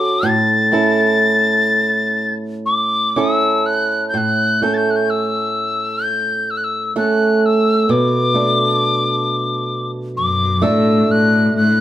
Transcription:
0.00 0.23 D3 medium
0.00 0.71 C#4 soft
0.00 0.33 F#4 soft
0.00 0.73 A4 medium
0.00 0.29 D6 medium
0.23 4.13 A2 medium
0.28 2.34 A6 medium
0.72 3.16 C#4 soft
0.72 3.17 E4 soft
0.72 3.17 A4 soft
2.66 3.18 D6 medium
3.16 4.61 C#4 soft
3.16 4.62 E4 soft
3.16 4.63 A4 soft
3.16 3.67 E6 medium
3.66 4.07 F#6 medium
4.09 4.19 G6 soft
4.14 7.90 A2 medium
4.14 4.64 F#6 medium
4.62 6.95 A3 soft
4.62 6.95 C#4 soft
4.62 6.96 A4 soft
4.62 4.75 G6 medium
4.74 4.92 G6 medium
4.74 4.79 A6 soft
4.90 4.97 F#6 soft
4.96 5.11 G6 medium
5.10 6.05 E6 medium
6.04 6.52 G6 medium
6.50 6.59 E6 medium
6.57 6.65 F#6 medium
6.64 6.97 E6 medium
6.96 8.34 A3 soft
6.96 7.98 C#4 soft
6.96 8.35 A4 soft
6.96 7.47 F#6 medium
7.46 7.92 E6 medium
7.89 11.55 B2 medium
7.89 9.91 D6 medium
8.34 10.61 A3 soft
8.34 10.62 D4 soft
8.34 10.63 A4 soft
10.17 10.65 F#2 medium
10.17 10.64 D6 medium
10.62 11.09 A2 medium
10.62 11.81 A3 soft
10.62 11.81 D4 soft
10.62 11.81 A4 soft
10.62 11.13 E6 medium
11.09 11.55 A2 medium
11.09 11.56 F#6 medium
11.56 11.81 A2 medium
11.56 11.81 F#6 medium

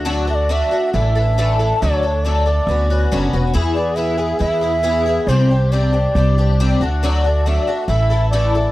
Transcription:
0.00 0.61 D2 medium
0.05 0.27 D3 medium
0.05 0.28 F#3 medium
0.05 0.27 A3 medium
0.05 0.27 D4 loud
0.05 0.26 F#4 medium
0.27 0.49 A3 soft
0.27 0.49 D4 soft
0.27 0.49 F#4 medium
0.27 0.36 E5 medium
0.35 0.53 D5 medium
0.49 0.71 D3 medium
0.49 0.71 F#3 medium
0.49 0.71 A3 medium
0.49 0.72 D4 medium
0.49 0.70 F#4 medium
0.49 0.93 E5 loud
0.71 0.93 A3 soft
0.71 0.93 D4 soft
0.71 0.93 F#4 medium
0.93 1.71 A1 loud
0.93 1.15 E3 medium
0.93 1.15 A3 medium
0.93 1.14 D4 medium
0.93 1.14 A4 medium
0.93 1.76 E5 loud
1.15 1.37 E3 soft
1.15 1.37 A3 soft
1.15 1.37 D4 soft
1.15 1.37 A4 medium
1.38 1.59 A2 medium
1.38 1.59 D3 medium
1.38 1.59 E3 medium
1.38 1.59 A3 medium
1.38 1.59 D4 medium
1.38 1.58 A4 medium
1.59 1.81 E3 medium
1.59 1.81 A3 medium
1.59 1.81 D4 medium
1.59 1.80 A4 medium
1.80 2.58 D2 loud
1.80 2.03 D3 medium
1.80 2.03 F#3 medium
1.80 2.03 A3 medium
1.80 2.02 D4 medium
1.80 2.01 A4 medium
1.80 2.25 C#5 medium
2.03 2.25 A3 soft
2.03 2.24 D4 soft
2.03 2.24 A4 soft
2.24 2.46 D3 medium
2.24 2.46 F#3 medium
2.24 2.46 A3 medium
2.24 2.46 D4 medium
2.24 2.45 A4 medium
2.24 3.33 D5 loud
2.46 2.68 A3 soft
2.46 2.68 D4 soft
2.46 2.67 A4 soft
2.67 3.06 D2 medium
2.67 2.89 F#3 medium
2.67 2.90 B3 medium
2.67 2.90 C#4 medium
2.71 2.89 F#4 medium
2.90 3.11 B3 soft
2.90 3.12 C#4 soft
2.90 3.11 F#4 medium
3.12 3.31 F#1 medium
3.12 3.33 D3 medium
3.12 3.33 F#3 medium
3.12 3.33 B3 medium
3.12 3.33 C#4 medium
3.12 3.32 F#4 medium
3.33 3.52 E1 medium
3.33 3.52 B3 soft
3.33 3.54 C#4 medium
3.33 3.54 F#4 medium
3.54 4.32 E2 loud
3.54 3.76 E3 medium
3.54 3.76 B3 medium
3.54 3.75 E4 medium
3.54 3.74 G#4 medium
3.74 3.96 B3 soft
3.74 3.96 E4 soft
3.74 3.97 G#4 soft
3.74 3.97 D5 loud
3.96 4.19 E3 medium
3.96 4.18 B3 medium
3.96 4.17 E4 medium
3.96 4.16 G#4 medium
3.96 4.40 E5 loud
4.18 4.39 B3 soft
4.18 4.39 E4 soft
4.18 4.40 G#4 medium
4.39 5.18 E2 medium
4.39 4.62 E3 medium
4.39 4.62 B3 medium
4.39 4.62 E4 medium
4.39 4.60 G#4 medium
4.39 5.29 E5 loud
4.61 4.82 B3 soft
4.61 4.83 E4 medium
4.61 4.83 G#4 medium
4.83 5.06 E3 medium
4.83 5.06 B3 medium
4.83 5.06 E4 medium
4.83 5.05 G#4 medium
5.06 5.28 B3 soft
5.06 5.29 E4 medium
5.06 5.28 G#4 medium
5.27 6.05 C2 medium
5.27 5.50 C3 medium
5.27 5.50 G3 medium
5.27 5.50 C4 medium
5.27 5.50 D4 medium
5.27 5.49 G4 loud
5.27 5.73 C5 loud
5.50 5.71 C4 soft
5.50 5.72 D4 soft
5.50 5.72 G4 medium
5.72 5.93 C3 medium
5.72 5.94 G3 medium
5.72 5.93 C4 medium
5.72 5.92 D4 medium
5.72 5.92 G4 medium
5.72 6.81 D5 medium
5.93 6.15 C4 soft
5.93 6.15 D4 medium
5.93 6.15 G4 medium
6.15 6.73 C2 loud
6.15 6.37 G3 medium
6.15 6.37 C4 medium
6.15 6.38 D4 medium
6.15 6.37 G4 medium
6.38 6.59 C4 soft
6.38 6.59 D4 medium
6.38 6.59 G4 medium
6.60 6.81 C3 medium
6.60 6.81 G3 medium
6.60 6.81 C4 medium
6.60 6.81 D4 medium
6.60 6.81 G4 medium
6.80 7.57 D2 medium
6.80 7.03 A3 medium
6.80 7.03 D4 medium
6.80 7.02 F#4 medium
7.03 7.24 D3 medium
7.03 7.25 F#3 loud
7.03 7.25 A3 medium
7.03 7.25 D4 loud
7.03 7.23 F#4 loud
7.24 7.45 A3 soft
7.24 7.46 D4 soft
7.24 7.46 F#4 medium
7.24 7.49 D5 medium
7.46 7.67 D3 medium
7.46 7.68 F#3 medium
7.46 7.68 A3 medium
7.46 7.67 D4 medium
7.46 7.66 F#4 medium
7.46 7.87 E5 loud
7.67 7.88 A3 soft
7.67 7.89 D4 medium
7.67 7.89 F#4 medium
7.87 8.65 A1 medium
7.87 8.10 E3 medium
7.87 8.11 A3 medium
7.87 8.10 E4 medium
7.87 8.09 A4 medium
7.87 8.28 E5 loud
8.10 8.32 E3 soft
8.10 8.32 A3 soft
8.10 8.32 E4 medium
8.10 8.32 A4 medium
8.30 8.54 A2 medium
8.30 8.54 D3 medium
8.30 8.54 E3 medium
8.30 8.54 A3 medium
8.30 8.54 E4 medium
8.30 8.53 A4 medium
8.30 8.72 D5 loud
8.55 8.72 E3 soft
8.55 8.72 A3 soft
8.55 8.72 E4 medium
8.55 8.72 A4 medium

